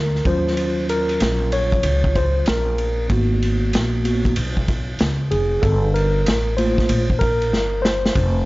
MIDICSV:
0, 0, Header, 1, 4, 480
1, 0, Start_track
1, 0, Tempo, 631579
1, 436, Time_signature, 4, 2, 24, 8
1, 6426, End_track
2, 0, Start_track
2, 0, Title_t, "Tine electric piano"
2, 0, Program_c, 0, 4
2, 0, Note_on_c, 0, 70, 93
2, 191, Note_on_c, 0, 54, 55
2, 194, Note_on_c, 0, 61, 49
2, 198, Note_on_c, 0, 65, 59
2, 204, Note_on_c, 0, 72, 97
2, 213, Note_off_c, 0, 70, 0
2, 650, Note_off_c, 0, 72, 0
2, 681, Note_on_c, 0, 70, 98
2, 1161, Note_on_c, 0, 73, 96
2, 1173, Note_off_c, 0, 70, 0
2, 1638, Note_on_c, 0, 72, 98
2, 1653, Note_off_c, 0, 73, 0
2, 1861, Note_off_c, 0, 72, 0
2, 1880, Note_on_c, 0, 70, 85
2, 2083, Note_off_c, 0, 54, 0
2, 2085, Note_off_c, 0, 61, 0
2, 2087, Note_off_c, 0, 65, 0
2, 2328, Note_off_c, 0, 70, 0
2, 2349, Note_on_c, 0, 58, 55
2, 2353, Note_on_c, 0, 59, 50
2, 2358, Note_on_c, 0, 66, 60
2, 3063, Note_off_c, 0, 58, 0
2, 3067, Note_off_c, 0, 59, 0
2, 3070, Note_off_c, 0, 66, 0
2, 3072, Note_on_c, 0, 58, 46
2, 3076, Note_on_c, 0, 59, 43
2, 3079, Note_on_c, 0, 66, 54
2, 3290, Note_off_c, 0, 58, 0
2, 3292, Note_off_c, 0, 59, 0
2, 3294, Note_off_c, 0, 66, 0
2, 4035, Note_on_c, 0, 68, 77
2, 4270, Note_on_c, 0, 69, 87
2, 4283, Note_off_c, 0, 68, 0
2, 4496, Note_off_c, 0, 69, 0
2, 4515, Note_on_c, 0, 70, 86
2, 4965, Note_off_c, 0, 70, 0
2, 4992, Note_on_c, 0, 72, 90
2, 4998, Note_on_c, 0, 57, 50
2, 5002, Note_on_c, 0, 58, 48
2, 5006, Note_on_c, 0, 65, 59
2, 5345, Note_off_c, 0, 57, 0
2, 5348, Note_off_c, 0, 58, 0
2, 5350, Note_off_c, 0, 65, 0
2, 5465, Note_on_c, 0, 70, 93
2, 5489, Note_off_c, 0, 72, 0
2, 5943, Note_on_c, 0, 72, 101
2, 5965, Note_off_c, 0, 70, 0
2, 6399, Note_off_c, 0, 72, 0
2, 6426, End_track
3, 0, Start_track
3, 0, Title_t, "Upright bass"
3, 0, Program_c, 1, 32
3, 0, Note_on_c, 1, 38, 83
3, 183, Note_off_c, 1, 38, 0
3, 193, Note_on_c, 1, 39, 78
3, 884, Note_off_c, 1, 39, 0
3, 917, Note_on_c, 1, 34, 92
3, 1373, Note_off_c, 1, 34, 0
3, 1395, Note_on_c, 1, 37, 94
3, 1852, Note_off_c, 1, 37, 0
3, 1878, Note_on_c, 1, 34, 90
3, 2333, Note_off_c, 1, 34, 0
3, 2356, Note_on_c, 1, 32, 106
3, 2812, Note_off_c, 1, 32, 0
3, 2840, Note_on_c, 1, 34, 95
3, 3294, Note_off_c, 1, 34, 0
3, 3320, Note_on_c, 1, 35, 98
3, 3774, Note_off_c, 1, 35, 0
3, 3800, Note_on_c, 1, 37, 79
3, 4026, Note_off_c, 1, 37, 0
3, 4039, Note_on_c, 1, 29, 84
3, 4266, Note_off_c, 1, 29, 0
3, 4281, Note_on_c, 1, 31, 101
3, 4735, Note_off_c, 1, 31, 0
3, 4760, Note_on_c, 1, 33, 93
3, 5214, Note_off_c, 1, 33, 0
3, 5239, Note_on_c, 1, 34, 102
3, 5719, Note_off_c, 1, 34, 0
3, 5719, Note_on_c, 1, 31, 83
3, 6174, Note_off_c, 1, 31, 0
3, 6197, Note_on_c, 1, 29, 99
3, 6426, Note_off_c, 1, 29, 0
3, 6426, End_track
4, 0, Start_track
4, 0, Title_t, "Drums"
4, 117, Note_on_c, 9, 38, 29
4, 191, Note_on_c, 9, 51, 59
4, 192, Note_on_c, 9, 36, 107
4, 193, Note_off_c, 9, 38, 0
4, 267, Note_off_c, 9, 51, 0
4, 268, Note_off_c, 9, 36, 0
4, 360, Note_on_c, 9, 38, 33
4, 433, Note_on_c, 9, 51, 62
4, 436, Note_off_c, 9, 38, 0
4, 509, Note_off_c, 9, 51, 0
4, 677, Note_on_c, 9, 51, 52
4, 753, Note_off_c, 9, 51, 0
4, 827, Note_on_c, 9, 51, 42
4, 903, Note_off_c, 9, 51, 0
4, 913, Note_on_c, 9, 44, 51
4, 913, Note_on_c, 9, 51, 73
4, 928, Note_on_c, 9, 38, 90
4, 989, Note_off_c, 9, 44, 0
4, 989, Note_off_c, 9, 51, 0
4, 1004, Note_off_c, 9, 38, 0
4, 1155, Note_on_c, 9, 51, 63
4, 1231, Note_off_c, 9, 51, 0
4, 1310, Note_on_c, 9, 36, 86
4, 1316, Note_on_c, 9, 51, 37
4, 1386, Note_off_c, 9, 36, 0
4, 1391, Note_off_c, 9, 51, 0
4, 1391, Note_on_c, 9, 51, 86
4, 1467, Note_off_c, 9, 51, 0
4, 1551, Note_on_c, 9, 36, 82
4, 1627, Note_off_c, 9, 36, 0
4, 1638, Note_on_c, 9, 36, 98
4, 1638, Note_on_c, 9, 51, 57
4, 1714, Note_off_c, 9, 36, 0
4, 1714, Note_off_c, 9, 51, 0
4, 1867, Note_on_c, 9, 44, 43
4, 1867, Note_on_c, 9, 51, 58
4, 1883, Note_on_c, 9, 38, 118
4, 1943, Note_off_c, 9, 44, 0
4, 1943, Note_off_c, 9, 51, 0
4, 1959, Note_off_c, 9, 38, 0
4, 2114, Note_on_c, 9, 51, 54
4, 2190, Note_off_c, 9, 51, 0
4, 2354, Note_on_c, 9, 36, 109
4, 2354, Note_on_c, 9, 51, 64
4, 2430, Note_off_c, 9, 36, 0
4, 2430, Note_off_c, 9, 51, 0
4, 2603, Note_on_c, 9, 51, 54
4, 2679, Note_off_c, 9, 51, 0
4, 2836, Note_on_c, 9, 44, 54
4, 2836, Note_on_c, 9, 51, 72
4, 2851, Note_on_c, 9, 38, 93
4, 2912, Note_off_c, 9, 44, 0
4, 2912, Note_off_c, 9, 51, 0
4, 2927, Note_off_c, 9, 38, 0
4, 3077, Note_on_c, 9, 51, 63
4, 3153, Note_off_c, 9, 51, 0
4, 3231, Note_on_c, 9, 36, 93
4, 3237, Note_on_c, 9, 51, 39
4, 3307, Note_off_c, 9, 36, 0
4, 3313, Note_off_c, 9, 51, 0
4, 3313, Note_on_c, 9, 51, 87
4, 3389, Note_off_c, 9, 51, 0
4, 3472, Note_on_c, 9, 36, 79
4, 3548, Note_off_c, 9, 36, 0
4, 3558, Note_on_c, 9, 51, 58
4, 3559, Note_on_c, 9, 36, 95
4, 3634, Note_off_c, 9, 51, 0
4, 3635, Note_off_c, 9, 36, 0
4, 3790, Note_on_c, 9, 44, 41
4, 3790, Note_on_c, 9, 51, 55
4, 3805, Note_on_c, 9, 38, 107
4, 3866, Note_off_c, 9, 44, 0
4, 3866, Note_off_c, 9, 51, 0
4, 3881, Note_off_c, 9, 38, 0
4, 4039, Note_on_c, 9, 51, 59
4, 4115, Note_off_c, 9, 51, 0
4, 4278, Note_on_c, 9, 36, 114
4, 4279, Note_on_c, 9, 51, 65
4, 4354, Note_off_c, 9, 36, 0
4, 4355, Note_off_c, 9, 51, 0
4, 4525, Note_on_c, 9, 51, 52
4, 4601, Note_off_c, 9, 51, 0
4, 4759, Note_on_c, 9, 44, 52
4, 4759, Note_on_c, 9, 51, 76
4, 4774, Note_on_c, 9, 38, 93
4, 4835, Note_off_c, 9, 44, 0
4, 4835, Note_off_c, 9, 51, 0
4, 4850, Note_off_c, 9, 38, 0
4, 5001, Note_on_c, 9, 51, 62
4, 5077, Note_off_c, 9, 51, 0
4, 5155, Note_on_c, 9, 36, 85
4, 5160, Note_on_c, 9, 38, 35
4, 5231, Note_off_c, 9, 36, 0
4, 5236, Note_off_c, 9, 38, 0
4, 5236, Note_on_c, 9, 51, 87
4, 5312, Note_off_c, 9, 51, 0
4, 5394, Note_on_c, 9, 36, 80
4, 5470, Note_off_c, 9, 36, 0
4, 5479, Note_on_c, 9, 51, 55
4, 5481, Note_on_c, 9, 36, 91
4, 5555, Note_off_c, 9, 51, 0
4, 5557, Note_off_c, 9, 36, 0
4, 5636, Note_on_c, 9, 51, 43
4, 5712, Note_off_c, 9, 51, 0
4, 5725, Note_on_c, 9, 38, 60
4, 5801, Note_off_c, 9, 38, 0
4, 5966, Note_on_c, 9, 38, 89
4, 6042, Note_off_c, 9, 38, 0
4, 6122, Note_on_c, 9, 38, 83
4, 6198, Note_off_c, 9, 38, 0
4, 6198, Note_on_c, 9, 36, 117
4, 6198, Note_on_c, 9, 51, 69
4, 6274, Note_off_c, 9, 36, 0
4, 6274, Note_off_c, 9, 51, 0
4, 6426, End_track
0, 0, End_of_file